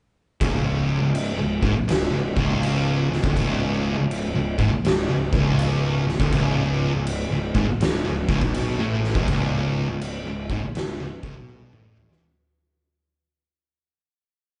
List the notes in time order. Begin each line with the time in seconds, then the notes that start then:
0.41 C#1 C#2, kick, crash
1.02 C#1 C#2
1.15 crash
1.38 C#1 C#2
1.62 G#1 G#2, kick
1.75 muted distorted electric guitar stroke, muted picked electric bass stroke
1.88 C#1 C#2, snare, crash
2.12 C#1 C#2
2.36 C#1 C#2, kick
2.63 crash
3.10 C#1 C#2, snare
3.24 D1 D2, kick
3.36 C#1 C#2, kick, crash
3.98 C#1 C#2
4.11 crash
4.35 C#1 C#2
4.59 G#1 G#2, kick
4.71 muted picked electric bass stroke, muted distorted electric guitar stroke
4.85 C#1 C#2, snare, crash
5.09 C#1 C#2
5.33 C#1 C#2, kick
5.59 crash
6.07 C#1 C#2, snare
6.20 D1 D2, kick
6.32 C#1 C#2, kick, crash
6.94 C#1 C#2
7.07 crash
7.31 C#1 C#2
7.55 G#1 G#2, kick
7.68 muted picked electric bass stroke, muted distorted electric guitar stroke
7.81 C#1 C#2, snare, crash
8.05 C#1 C#2
8.29 C#1 C#2, kick
8.41 B1 B2, kick
8.54 crash
8.79 A1 A2
9.04 snare
9.15 E1 E2, kick
9.28 C#1 C#2, kick, crash
9.90 C#1 C#2
10.02 crash
10.27 C#1 C#2
10.50 G#1 G#2, kick
10.64 muted distorted electric guitar stroke, muted picked electric bass stroke
10.75 C#1 C#2, snare, crash
11.01 C#1 C#2
11.23 C#1 C#2, kick
11.38 B1 B2
11.49 high tom
11.73 A1 A2, mid tom
11.97 mid tom
12.11 E1 E2, snare